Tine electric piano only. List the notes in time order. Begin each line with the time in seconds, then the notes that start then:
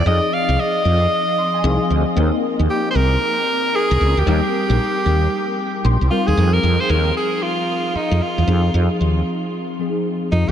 0.05 F3 C4 D#4 G#4
1.38 C6
1.54 G#5
1.63 F3 C4 D#4 G#4 F5
2.16 A#3 C4 D#4 A#4
4.26 G3 C4 D#4 A#4
5.85 C6
6.10 G3 C4 D#4 A#4 F5
6.36 F3 C4 D#4 G#4
8.46 F3 C4 D#4 G#4
9.79 F3 C4 D#4 G#4